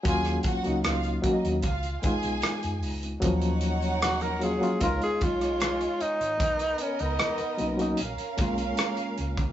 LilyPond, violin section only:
\new Staff \with { instrumentName = "Violin section" } { \time 4/4 \key ees \minor \tempo 4 = 76 <aes' aes''>8 <ges' ges''>8 <f' f''>8 <ees' ees''>8 <f' f''>8 <aes' aes''>4 r8 | <ees' des'' ges''>2 <aes f' des''>2 | <b ais' dis''>2 <des' bes' f''>2 | }